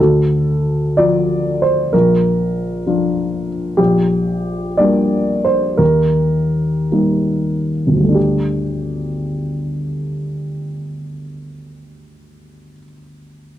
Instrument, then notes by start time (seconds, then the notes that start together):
upright piano
0.00 D2 A4
0.97 F3 F4 D5
1.62 C5
1.93 A#1 A#4
2.86 F3 D4 F4
3.77 A#1 G4
4.77 G3 A#3 D4 D5
5.45 C5
5.77 D#2 A#4
6.92 G3 A#3 D#4
7.87 G1
7.93 D2
7.99 G3
8.04 A3
8.09 D4
8.14 G4